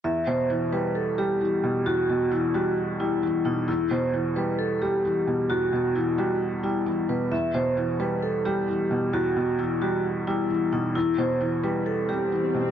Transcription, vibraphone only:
\new Staff \with { instrumentName = "Vibraphone" } { \time 4/4 \key e \minor \tempo 4 = 132 e''8 c''8 r8 b'8 a'8 g'4. | fis'4 e'8 fis'8 r8 e'4 dis'8 | e'8 c''8 r8 b'8 a'8 g'4. | fis'4 e'8 fis'8 r8 e'4 b'8 |
e''8 c''8 r8 b'8 a'8 g'4. | fis'4 e'8 fis'8 r8 e'4 dis'8 | e'8 c''8 r8 b'8 a'8 g'4. | }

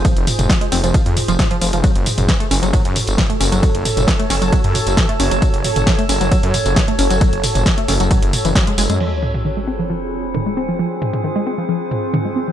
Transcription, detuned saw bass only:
\new Staff \with { instrumentName = "Detuned saw bass" } { \clef bass \time 4/4 \key ges \lydian \tempo 4 = 134 r16 f,,16 r16 f,,16 r8 f,,16 f,,16 r16 f,16 r16 f,,16 r8 f,,16 f,,16 | r16 ges,,16 r16 ges,,16 r8 ges,,16 ges,,16 r16 ges,16 r16 ges,,16 r8 ges,,16 ges,,16 | r16 ges,,16 r16 ges,,16 r8 ges,,16 ges,,16 r16 ges,16 r16 ges,,16 r8 ges,,16 ges,,16 | r16 ges,,16 r16 ges,,16 r8 ges,,16 ges,,16 r16 ges,16 r16 ges,,16 r8 ges,,16 ges,,16 |
r16 ges,,16 r16 ges,,16 r8 ges,,16 ges,,16 r16 ges,,16 r16 ges,,16 r8 ges,,16 ges,16 | r1 | r1 | }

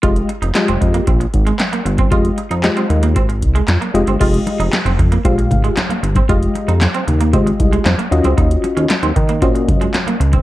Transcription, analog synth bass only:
\new Staff \with { instrumentName = "Analog synth bass" } { \clef bass \time 4/4 \key f \minor \tempo 4 = 115 f,,8 r16 f,,16 r16 f,,16 f,8 bes,,8 aes,,8 r8 g,,8 | f,,8 r16 f,8 r16 ees,8 aes,,8 c,8 f,16 r16 f,,16 g,,16 | f,,8 r16 f,,16 r16 f,,16 f,8 bes,,8 aes,,8 r8 g,,8 | f,,8 r16 f,8 r16 ees,8 aes,,8 c,8 f,16 r16 ees,16 des,16 |
ees,8 r16 ees,16 r16 ees,16 ees8 bes,8 ges,8 r8 des,8 | }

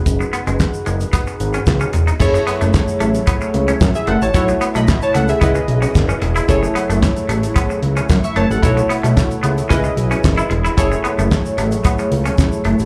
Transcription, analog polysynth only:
\new Staff \with { instrumentName = "Analog polysynth" } { \time 4/4 \key fis \dorian \tempo 4 = 112 << { r1 | r2. r16 <gis' e''>16 <a' fis''>16 <cis'' a''>16~ | <cis'' a''>16 r8 <dis'' b''>8 <cis'' a''>16 <a' fis''>16 <gis' e''>8 r4. r16 | r2. r16 <e'' cis'''>16 <cis'' a''>16 <a' fis''>16~ |
<a' fis''>16 r2. r8. | r1 | } \\ { <dis' fis' gis' b'>2.~ <dis' fis' gis' b'>8 r8 | <e' gis' a' cis''>1 | <e' fis' a' cis''>2 <e' gis' b' dis''>2 | <e' gis' a' cis''>1 |
<e' fis' a' cis''>2 <e' gis' b' dis''>2 | <e' gis' a' cis''>1 | } >> }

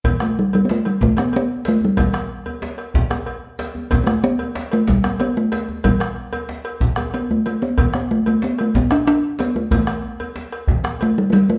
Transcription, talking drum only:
\new Staff \with { instrumentName = "Talking drum" } { \time 12/8 \key a \dorian \tempo 4. = 124 r8 a8 g8 g16. b32 a8 g8 a8 b8 b4 a8 g8 | g2. r2. | r16. b32 a8 b4. a8 g4 b8 a4 r8 | g2 r2 b8 a8 a8 b8~ |
b8 b8 a8 a8 b8 a8 b8 d'8 d'4 b8 a8 | a2. r4 a8 g16. a32 g8 a8 | }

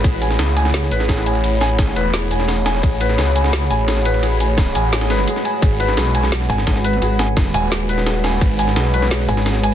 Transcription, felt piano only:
\new Staff \with { instrumentName = "Felt piano" } { \time 4/4 \key a \lydian \tempo 4 = 172 gis'8 gis''8 r8 gis''8 gis'8 b'8 gis'8 gis''8 | r8 gis''8 gis'8 b'8 gis'8 gis''8 r8 gis''8 | gis'8 b'8 gis'8 gis''8 r8 gis''8 gis'8 b'8 | gis'8 gis''8 r8 gis''8 gis'8 b'8 gis'8 gis''8 |
gis'8 b'8 gis'8 gis''8 r8 gis''8 gis'8 b'8 | gis'8 gis''8 r8 gis''8 gis'8 b'8 gis'8 gis''8 | r8 gis''8 gis'8 b'8 gis'8 gis''8 r8 gis''8 | }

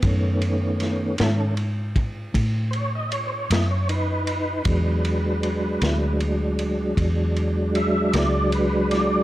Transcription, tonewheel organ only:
<<
  \new Staff \with { instrumentName = "Tonewheel organ" } { \time 12/8 \key e \major \tempo 4. = 52 b4. r2 <c'' cis''>16 dis''16 cis''16 <c'' cis''>16 dis''16 cis''16 b'4~ | b'2 r2 e''8 d''8 b'8 d''8 | }
  \new Staff \with { instrumentName = "Tonewheel organ" } { \time 12/8 \key e \major <dis a cis'>4. <dis cis' a'>8 r2. dis'4 | <fis gis d'>1. | }
>>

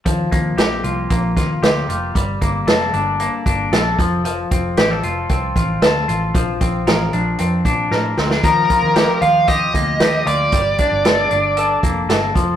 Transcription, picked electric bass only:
\new Staff \with { instrumentName = "Picked electric bass" } { \clef bass \time 4/4 \key ees \lydian \tempo 4 = 115 ees,8 ees,8 bes,,8 c,8 bes,,8 ees,8 d,8 f,,8 | g,,8 g,,8 f,,8 g,,8. r16 g,,8 bes,,8 f,,8~ | f,,8 f,,8 a,,8 f,,8 c,8 a,,8 d,8 a,,8 | bes,,8 bes,,8 a,,8 bes,,8 f,8 bes,8 a,8 d,8 |
ees,8 r16 ees,8 r16 ees,4 d,8 ees,8 d,8 | g,,8 r16 g,,8. g,,4 f,,8 g,,8 f,,8 | }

